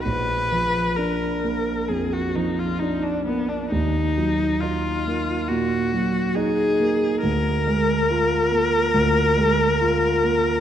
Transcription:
X:1
M:4/4
L:1/16
Q:1/4=68
K:Bbphr
V:1 name="Viola"
c4 B4 A G E F E =D C D | E4 F4 G4 A4 | B16 |]
V:2 name="Grand piano"
B,,,2 F,2 =D2 B,2 F,,2 F,2 D2 B,2 | E,,2 G,2 E2 B,2 B,,2 G,2 E2 B,2 | =D,,2 A,2 F2 B,2 D,,2 A,2 F2 B,2 |]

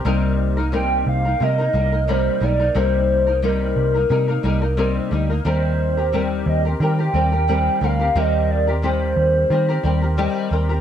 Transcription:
X:1
M:4/4
L:1/16
Q:"Swing 16ths" 1/4=89
K:Eb
V:1 name="Soft synth lead"
z4 g2 f2 e4 c2 d2 | c4 B8- B2 z2 | c6 e2 g6 f2 | e2 d2 c8- c2 z2 |]
V:2 name="Nylon-string guitar"
[C,G,B,EB]3 [B,EB] [C,G,B,EB]3 [B,EB] [G,B,EB] [B,EB] [G,B,EB] [B,EB] [C,G,B,EB]2 [G,B,EB] [B,EB] | [C,G,B,EB]3 [B,EB] [C,G,B,EB]3 [B,EB] [G,B,EB] [B,EB] [G,B,EB] [B,EB] [C,G,B,EB]2 [G,B,EB] [B,EB] | [E,G,CGB]3 [CGB] [E,G,CGB]3 [CGB] [G,CGB] [CGB] [G,CGB] [CGB] [E,G,CGB]2 [G,CGB] [CGB] | [E,G,CGB]3 [CGB] [E,G,CGB]4 [G,CGB] [CGB] [G,CGB] [CGB] [E,G,CGB]2 [G,CGB] [CGB] |]
V:3 name="Picked electric bass" clef=bass
C,,6 C,,2 C,2 C,,4 _C,,2 | C,,6 C,,2 C,2 C,,4 D,,2 | E,,6 E,,2 E,2 E,,4 D,,2 | E,,6 E,,2 E,2 E,,3 z E,,2 |]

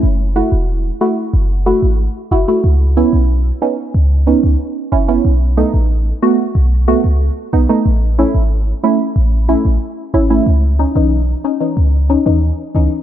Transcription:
X:1
M:4/4
L:1/16
Q:1/4=92
K:C#m
V:1 name="Synth stab"
z2 [A,EF] z3 [A,EF] z3 [A,EF] z3 [EF] [A,EF] | z2 [B,CE] z3 [B,CD] z3 [B,CD] z3 [CE] [B,CE] | z2 [A,B,D] z3 [A,B,F] z3 [A,B,F] z3 [B,D] [A,B,D] | z2 [A,CE] z3 [A,CE] z3 [A,CE] z3 [CE] [A,CE] |
z2 [CD] [E,CD] z2 [CD] [E,CD] z2 [CD] [E,CD] z2 [E,CD] z |]
V:2 name="808-style bass" clef=bass
F,,,3 E,,,3 z2 F,,,3 G,,,2 z F,,, z | C,,3 B,,,3 z2 C,,3 C,, z2 F,,,2 | B,,,3 A,,,3 z2 B,,,3 C,,2 z B,,, z | A,,,3 G,,,3 z2 A,,,3 A,,, z2 G,,,2 |
C,,3 B,,,3 z2 C,,3 D,,2 z C,, z |]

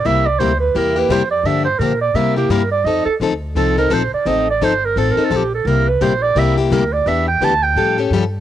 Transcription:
X:1
M:4/4
L:1/16
Q:"Swing" 1/4=171
K:Cmix
V:1 name="Clarinet"
e2 d2 c2 =B2 _B2 =B2 c2 d2 | e2 c2 B2 d2 e2 G2 B2 d2 | _e2 A2 z4 A2 B2 c2 d2 | _e2 d2 c2 B2 (3A2 B2 A2 G2 A2 |
B2 =B2 c2 d2 e2 G2 _B2 d2 | e2 g2 a2 g4 z6 |]
V:2 name="Steel-string acoustic guitar"
[C,G,B,EG]2 z2 [C,G,B,EG] z3 [C,G,B,EG]2 [B,EG]2 [C,G,B,EG] z3 | [D,F,B,DG]2 z2 [D,F,B,DG] z3 [C,G,B,EG]2 [B,EG]2 [C,G,B,EG] z3 | [F,C_EA]2 z2 [F,CEA] z3 [F,CEA]2 [CEA]2 [F,CEA] z3 | [F,C_EA]2 z2 [F,CEA] z3 [F,CEA]2 [CEA]2 [F,CEA] z3 |
[C,G,B,EG]2 z2 [C,G,B,EG] z3 [C,G,B,EG]2 [B,EG]2 [C,G,B,EG] z3 | [E,=B,DG]2 z2 [E,B,DG] z3 [^E,G,^CGA]2 [CGA]2 [E,G,CGA] z3 |]
V:3 name="Upright bass" clef=bass
C,,4 D,,4 E,,4 F,,4 | G,,4 B,,4 C,4 G,,4 | F,,2 z2 D,,4 C,,4 B,,,2 z2 | A,,,4 G,,,4 A,,,2 z2 B,,,4 |
C,,4 B,,,4 C,,4 D,,4 | E,,4 D,,4 A,,4 G,,4 |]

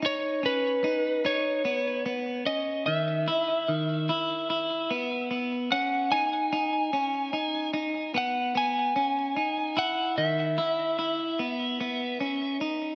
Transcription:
X:1
M:4/4
L:1/8
Q:1/4=74
K:C#dor
V:1 name="Electric slide guitar"
c B2 c2 z d e- | e4- e z f g- | g3 z f g3 | f e6 z |]
V:2 name="Clean electric guitar"
D C D D B, B, C D, | E D, E E B, B, C D | D C D D B, B, C D | E D, E E B, B, C D |]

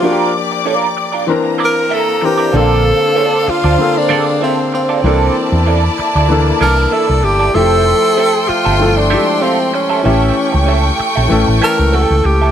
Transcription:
X:1
M:4/4
L:1/16
Q:"Swing 16ths" 1/4=96
K:Bblyd
V:1 name="String section"
[dd']8 [B,b]8 | [Dcf]16 | [Eda]16 | [Agc']16 |
[A,g^c']16 |]
V:2 name="Vibraphone"
c2 z12 z2 | z2 A c12- c- | c z4 z a8- a2 | c e12- e2 z |
z12 A4 |]
V:3 name="Clean electric guitar"
[DFBd]2 z2 [DFBd] z2 [DFBd] z2 [CEBd] z [CEBe] z2 [CEBd] | [CFAd]2 z2 [CFAd] z2 [CFAd] z2 [CFAd] z [CFAe] z2 [CFAd] | [B,EAd]2 z2 [B,EAd] z2 [B,EAd] z2 [B,EAd] z [B,EAe] z2 [B,EAd] | [CGAe]2 z2 [CGAe] z2 [CGAe] z2 [CGAe] z [CGAf] z2 [CGAe] |
[^CGAe]2 z2 [CGAe] z2 [CGAe] z2 [CGAe] z [CGAg] z2 [CGAe] |]
V:4 name="Tenor saxophone"
F2 z8 B2 A2 G2 | A6 F3 D3 C2 C2- | C6 z4 B2 A2 G2 | A6 F3 D3 C2 _D2- |
_D6 z4 B2 A2 G2 |]
V:5 name="Grand piano"
[F,B,D_G=G]6 z2 [E,CDB]4 z2 [E,CDB]2 | [D,B,CA]6 z2 [D,B,CA]2 [D,B,C_A=A]4 z2 | [E,B,DA]6 z2 [E,B,DA]2 [E,B,Da]4 z2 | [F,A,EG]6 z2 [F,A,EA]2 [F,_A,=A,EG]4 z2 |
[E,A,^CG]6 z2 [E,A,CA]2 [E,A,Ca]4 z2 |]
V:6 name="Fingered electric bass" clef=bass
z16 | B,,,3 z4 D,, z8 | C,,2 z E,,3 z D,,3 C,,2 z C,, G,,,2 | F,,,3 z4 G,,,4 z4 z |
A,,,2 z ^C,,3 z B,,, A,,, A,,, z C,,2 C,, C,,2 |]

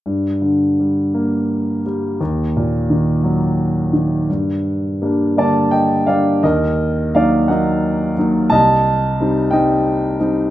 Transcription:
X:1
M:6/8
L:1/8
Q:3/8=57
K:Gm
V:1 name="Grand piano"
z6 | z6 | z3 [da] [eg] [df] | [Be]2 [df] [e_g]2 z |
[ea]3 [eg]2 z |]
V:2 name="Grand piano" clef=bass
G,, D, G, B,2 G, | E,, B,, E, _G,2 E, | G,,2 [G,B,D] [D,G,B,]2 [G,B,D] | E,,2 [_G,B,E] [G,B,E]2 [G,B,E] |
C,,2 [G,CE] [G,CE]2 [G,CE] |]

